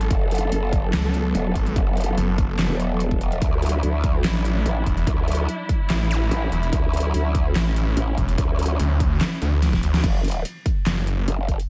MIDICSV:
0, 0, Header, 1, 6, 480
1, 0, Start_track
1, 0, Tempo, 413793
1, 123, Time_signature, 4, 2, 24, 8
1, 13562, End_track
2, 0, Start_track
2, 0, Title_t, "String section"
2, 0, Program_c, 0, 48
2, 0, Note_on_c, 0, 54, 88
2, 0, Note_on_c, 0, 69, 95
2, 122, Note_on_c, 0, 59, 83
2, 3918, Note_off_c, 0, 69, 0
2, 3924, Note_off_c, 0, 59, 0
2, 3964, Note_on_c, 0, 62, 81
2, 3964, Note_on_c, 0, 64, 98
2, 7765, Note_off_c, 0, 62, 0
2, 7803, Note_on_c, 0, 61, 83
2, 11597, Note_off_c, 0, 64, 0
2, 11598, Note_off_c, 0, 54, 0
2, 11605, Note_off_c, 0, 61, 0
2, 13562, End_track
3, 0, Start_track
3, 0, Title_t, "Wobble bass"
3, 0, Program_c, 1, 39
3, 123, Note_on_c, 1, 30, 97
3, 585, Note_off_c, 1, 30, 0
3, 603, Note_on_c, 1, 30, 95
3, 1065, Note_off_c, 1, 30, 0
3, 1563, Note_on_c, 1, 28, 98
3, 1785, Note_off_c, 1, 28, 0
3, 2043, Note_on_c, 1, 30, 99
3, 2505, Note_off_c, 1, 30, 0
3, 3131, Note_on_c, 1, 28, 98
3, 3946, Note_off_c, 1, 28, 0
3, 3963, Note_on_c, 1, 38, 100
3, 4425, Note_off_c, 1, 38, 0
3, 4443, Note_on_c, 1, 38, 96
3, 4905, Note_off_c, 1, 38, 0
3, 5403, Note_on_c, 1, 33, 100
3, 5625, Note_off_c, 1, 33, 0
3, 5883, Note_on_c, 1, 38, 101
3, 6345, Note_off_c, 1, 38, 0
3, 7323, Note_on_c, 1, 33, 101
3, 7545, Note_off_c, 1, 33, 0
3, 7803, Note_on_c, 1, 38, 97
3, 8265, Note_off_c, 1, 38, 0
3, 8283, Note_on_c, 1, 38, 97
3, 8745, Note_off_c, 1, 38, 0
3, 9243, Note_on_c, 1, 33, 101
3, 9465, Note_off_c, 1, 33, 0
3, 9723, Note_on_c, 1, 38, 101
3, 10185, Note_off_c, 1, 38, 0
3, 11642, Note_on_c, 1, 30, 100
3, 12105, Note_off_c, 1, 30, 0
3, 13083, Note_on_c, 1, 30, 100
3, 13430, Note_off_c, 1, 30, 0
3, 13562, End_track
4, 0, Start_track
4, 0, Title_t, "Detuned saw bass"
4, 0, Program_c, 2, 39
4, 1083, Note_on_c, 2, 37, 102
4, 1545, Note_off_c, 2, 37, 0
4, 1803, Note_on_c, 2, 32, 93
4, 2025, Note_off_c, 2, 32, 0
4, 2524, Note_on_c, 2, 30, 98
4, 2870, Note_off_c, 2, 30, 0
4, 2891, Note_on_c, 2, 30, 93
4, 3110, Note_off_c, 2, 30, 0
4, 4923, Note_on_c, 2, 33, 103
4, 5385, Note_off_c, 2, 33, 0
4, 5643, Note_on_c, 2, 28, 93
4, 5865, Note_off_c, 2, 28, 0
4, 6844, Note_on_c, 2, 33, 102
4, 7305, Note_off_c, 2, 33, 0
4, 7564, Note_on_c, 2, 28, 94
4, 7786, Note_off_c, 2, 28, 0
4, 8763, Note_on_c, 2, 33, 100
4, 9225, Note_off_c, 2, 33, 0
4, 9483, Note_on_c, 2, 28, 96
4, 9705, Note_off_c, 2, 28, 0
4, 10203, Note_on_c, 2, 38, 99
4, 10665, Note_off_c, 2, 38, 0
4, 10923, Note_on_c, 2, 38, 102
4, 11385, Note_off_c, 2, 38, 0
4, 11402, Note_on_c, 2, 38, 95
4, 11625, Note_off_c, 2, 38, 0
4, 12602, Note_on_c, 2, 30, 98
4, 13065, Note_off_c, 2, 30, 0
4, 13562, End_track
5, 0, Start_track
5, 0, Title_t, "Zap"
5, 0, Program_c, 3, 103
5, 7084, Note_on_c, 3, 60, 63
5, 7210, Note_off_c, 3, 60, 0
5, 13562, End_track
6, 0, Start_track
6, 0, Title_t, "Drums"
6, 10, Note_on_c, 9, 42, 38
6, 123, Note_off_c, 9, 42, 0
6, 123, Note_on_c, 9, 36, 127
6, 123, Note_on_c, 9, 42, 81
6, 239, Note_off_c, 9, 36, 0
6, 239, Note_off_c, 9, 42, 0
6, 363, Note_on_c, 9, 42, 47
6, 405, Note_off_c, 9, 42, 0
6, 405, Note_on_c, 9, 42, 61
6, 442, Note_off_c, 9, 42, 0
6, 442, Note_on_c, 9, 42, 76
6, 558, Note_off_c, 9, 42, 0
6, 603, Note_on_c, 9, 42, 77
6, 719, Note_off_c, 9, 42, 0
6, 843, Note_on_c, 9, 36, 113
6, 843, Note_on_c, 9, 42, 52
6, 959, Note_off_c, 9, 36, 0
6, 959, Note_off_c, 9, 42, 0
6, 1083, Note_on_c, 9, 38, 127
6, 1083, Note_on_c, 9, 39, 92
6, 1083, Note_on_c, 9, 42, 77
6, 1199, Note_off_c, 9, 38, 0
6, 1199, Note_off_c, 9, 39, 0
6, 1199, Note_off_c, 9, 42, 0
6, 1323, Note_on_c, 9, 42, 52
6, 1439, Note_off_c, 9, 42, 0
6, 1563, Note_on_c, 9, 42, 76
6, 1679, Note_off_c, 9, 42, 0
6, 1803, Note_on_c, 9, 36, 62
6, 1803, Note_on_c, 9, 42, 54
6, 1919, Note_off_c, 9, 36, 0
6, 1919, Note_off_c, 9, 42, 0
6, 1930, Note_on_c, 9, 42, 36
6, 2043, Note_on_c, 9, 36, 127
6, 2044, Note_off_c, 9, 42, 0
6, 2044, Note_on_c, 9, 42, 77
6, 2159, Note_off_c, 9, 36, 0
6, 2160, Note_off_c, 9, 42, 0
6, 2284, Note_on_c, 9, 42, 46
6, 2326, Note_off_c, 9, 42, 0
6, 2326, Note_on_c, 9, 42, 61
6, 2364, Note_off_c, 9, 42, 0
6, 2364, Note_on_c, 9, 42, 76
6, 2480, Note_off_c, 9, 42, 0
6, 2524, Note_on_c, 9, 42, 75
6, 2640, Note_off_c, 9, 42, 0
6, 2763, Note_on_c, 9, 36, 112
6, 2764, Note_on_c, 9, 42, 50
6, 2879, Note_off_c, 9, 36, 0
6, 2880, Note_off_c, 9, 42, 0
6, 3003, Note_on_c, 9, 38, 124
6, 3003, Note_on_c, 9, 39, 88
6, 3003, Note_on_c, 9, 42, 77
6, 3119, Note_off_c, 9, 38, 0
6, 3119, Note_off_c, 9, 39, 0
6, 3119, Note_off_c, 9, 42, 0
6, 3244, Note_on_c, 9, 42, 51
6, 3360, Note_off_c, 9, 42, 0
6, 3483, Note_on_c, 9, 42, 76
6, 3599, Note_off_c, 9, 42, 0
6, 3611, Note_on_c, 9, 36, 66
6, 3723, Note_on_c, 9, 42, 53
6, 3727, Note_off_c, 9, 36, 0
6, 3839, Note_off_c, 9, 42, 0
6, 3851, Note_on_c, 9, 42, 35
6, 3963, Note_off_c, 9, 42, 0
6, 3963, Note_on_c, 9, 36, 124
6, 3963, Note_on_c, 9, 42, 77
6, 4079, Note_off_c, 9, 36, 0
6, 4079, Note_off_c, 9, 42, 0
6, 4203, Note_on_c, 9, 42, 47
6, 4246, Note_off_c, 9, 42, 0
6, 4246, Note_on_c, 9, 42, 59
6, 4283, Note_off_c, 9, 42, 0
6, 4283, Note_on_c, 9, 42, 77
6, 4399, Note_off_c, 9, 42, 0
6, 4444, Note_on_c, 9, 42, 74
6, 4560, Note_off_c, 9, 42, 0
6, 4683, Note_on_c, 9, 36, 109
6, 4683, Note_on_c, 9, 42, 53
6, 4799, Note_off_c, 9, 36, 0
6, 4799, Note_off_c, 9, 42, 0
6, 4923, Note_on_c, 9, 38, 127
6, 4923, Note_on_c, 9, 39, 88
6, 4923, Note_on_c, 9, 42, 76
6, 5039, Note_off_c, 9, 38, 0
6, 5039, Note_off_c, 9, 39, 0
6, 5039, Note_off_c, 9, 42, 0
6, 5164, Note_on_c, 9, 42, 51
6, 5280, Note_off_c, 9, 42, 0
6, 5403, Note_on_c, 9, 42, 77
6, 5519, Note_off_c, 9, 42, 0
6, 5643, Note_on_c, 9, 36, 61
6, 5643, Note_on_c, 9, 42, 54
6, 5759, Note_off_c, 9, 36, 0
6, 5759, Note_off_c, 9, 42, 0
6, 5770, Note_on_c, 9, 42, 35
6, 5883, Note_off_c, 9, 42, 0
6, 5883, Note_on_c, 9, 36, 121
6, 5883, Note_on_c, 9, 42, 80
6, 5999, Note_off_c, 9, 36, 0
6, 5999, Note_off_c, 9, 42, 0
6, 6122, Note_on_c, 9, 42, 48
6, 6165, Note_off_c, 9, 42, 0
6, 6165, Note_on_c, 9, 42, 62
6, 6203, Note_off_c, 9, 42, 0
6, 6203, Note_on_c, 9, 42, 77
6, 6319, Note_off_c, 9, 42, 0
6, 6364, Note_on_c, 9, 42, 77
6, 6480, Note_off_c, 9, 42, 0
6, 6603, Note_on_c, 9, 36, 105
6, 6604, Note_on_c, 9, 42, 55
6, 6719, Note_off_c, 9, 36, 0
6, 6720, Note_off_c, 9, 42, 0
6, 6844, Note_on_c, 9, 38, 122
6, 6844, Note_on_c, 9, 39, 89
6, 6844, Note_on_c, 9, 42, 83
6, 6960, Note_off_c, 9, 38, 0
6, 6960, Note_off_c, 9, 39, 0
6, 6960, Note_off_c, 9, 42, 0
6, 7084, Note_on_c, 9, 42, 53
6, 7200, Note_off_c, 9, 42, 0
6, 7324, Note_on_c, 9, 42, 78
6, 7440, Note_off_c, 9, 42, 0
6, 7564, Note_on_c, 9, 42, 54
6, 7680, Note_off_c, 9, 42, 0
6, 7691, Note_on_c, 9, 42, 37
6, 7803, Note_on_c, 9, 36, 120
6, 7804, Note_off_c, 9, 42, 0
6, 7804, Note_on_c, 9, 42, 85
6, 7919, Note_off_c, 9, 36, 0
6, 7920, Note_off_c, 9, 42, 0
6, 8044, Note_on_c, 9, 42, 52
6, 8086, Note_off_c, 9, 42, 0
6, 8086, Note_on_c, 9, 42, 67
6, 8124, Note_off_c, 9, 42, 0
6, 8124, Note_on_c, 9, 42, 82
6, 8240, Note_off_c, 9, 42, 0
6, 8284, Note_on_c, 9, 42, 80
6, 8400, Note_off_c, 9, 42, 0
6, 8523, Note_on_c, 9, 36, 105
6, 8524, Note_on_c, 9, 42, 57
6, 8639, Note_off_c, 9, 36, 0
6, 8640, Note_off_c, 9, 42, 0
6, 8765, Note_on_c, 9, 38, 117
6, 8765, Note_on_c, 9, 39, 90
6, 8765, Note_on_c, 9, 42, 83
6, 8881, Note_off_c, 9, 38, 0
6, 8881, Note_off_c, 9, 39, 0
6, 8881, Note_off_c, 9, 42, 0
6, 9004, Note_on_c, 9, 42, 55
6, 9120, Note_off_c, 9, 42, 0
6, 9244, Note_on_c, 9, 42, 82
6, 9360, Note_off_c, 9, 42, 0
6, 9483, Note_on_c, 9, 36, 60
6, 9484, Note_on_c, 9, 42, 56
6, 9599, Note_off_c, 9, 36, 0
6, 9600, Note_off_c, 9, 42, 0
6, 9611, Note_on_c, 9, 42, 39
6, 9723, Note_off_c, 9, 42, 0
6, 9723, Note_on_c, 9, 36, 121
6, 9723, Note_on_c, 9, 42, 85
6, 9839, Note_off_c, 9, 36, 0
6, 9839, Note_off_c, 9, 42, 0
6, 9963, Note_on_c, 9, 42, 51
6, 10005, Note_off_c, 9, 42, 0
6, 10005, Note_on_c, 9, 42, 66
6, 10043, Note_off_c, 9, 42, 0
6, 10043, Note_on_c, 9, 42, 86
6, 10159, Note_off_c, 9, 42, 0
6, 10203, Note_on_c, 9, 42, 85
6, 10319, Note_off_c, 9, 42, 0
6, 10443, Note_on_c, 9, 36, 105
6, 10443, Note_on_c, 9, 42, 58
6, 10559, Note_off_c, 9, 36, 0
6, 10559, Note_off_c, 9, 42, 0
6, 10683, Note_on_c, 9, 38, 122
6, 10683, Note_on_c, 9, 39, 91
6, 10683, Note_on_c, 9, 42, 85
6, 10799, Note_off_c, 9, 38, 0
6, 10799, Note_off_c, 9, 39, 0
6, 10799, Note_off_c, 9, 42, 0
6, 10923, Note_on_c, 9, 42, 55
6, 11039, Note_off_c, 9, 42, 0
6, 11163, Note_on_c, 9, 38, 62
6, 11163, Note_on_c, 9, 42, 83
6, 11279, Note_off_c, 9, 38, 0
6, 11279, Note_off_c, 9, 42, 0
6, 11290, Note_on_c, 9, 36, 62
6, 11290, Note_on_c, 9, 38, 64
6, 11403, Note_on_c, 9, 42, 59
6, 11406, Note_off_c, 9, 36, 0
6, 11406, Note_off_c, 9, 38, 0
6, 11519, Note_off_c, 9, 42, 0
6, 11530, Note_on_c, 9, 38, 84
6, 11530, Note_on_c, 9, 42, 39
6, 11642, Note_on_c, 9, 36, 125
6, 11643, Note_off_c, 9, 42, 0
6, 11643, Note_on_c, 9, 42, 84
6, 11643, Note_on_c, 9, 49, 108
6, 11646, Note_off_c, 9, 38, 0
6, 11758, Note_off_c, 9, 36, 0
6, 11759, Note_off_c, 9, 42, 0
6, 11759, Note_off_c, 9, 49, 0
6, 11883, Note_on_c, 9, 42, 51
6, 11925, Note_off_c, 9, 42, 0
6, 11925, Note_on_c, 9, 42, 67
6, 11963, Note_off_c, 9, 42, 0
6, 11963, Note_on_c, 9, 42, 84
6, 12079, Note_off_c, 9, 42, 0
6, 12124, Note_on_c, 9, 42, 86
6, 12240, Note_off_c, 9, 42, 0
6, 12363, Note_on_c, 9, 36, 110
6, 12363, Note_on_c, 9, 42, 57
6, 12479, Note_off_c, 9, 36, 0
6, 12479, Note_off_c, 9, 42, 0
6, 12603, Note_on_c, 9, 38, 123
6, 12603, Note_on_c, 9, 39, 95
6, 12603, Note_on_c, 9, 42, 83
6, 12719, Note_off_c, 9, 38, 0
6, 12719, Note_off_c, 9, 39, 0
6, 12719, Note_off_c, 9, 42, 0
6, 12843, Note_on_c, 9, 42, 56
6, 12959, Note_off_c, 9, 42, 0
6, 13083, Note_on_c, 9, 42, 83
6, 13199, Note_off_c, 9, 42, 0
6, 13322, Note_on_c, 9, 36, 61
6, 13324, Note_on_c, 9, 42, 58
6, 13438, Note_off_c, 9, 36, 0
6, 13440, Note_off_c, 9, 42, 0
6, 13450, Note_on_c, 9, 42, 39
6, 13562, Note_off_c, 9, 42, 0
6, 13562, End_track
0, 0, End_of_file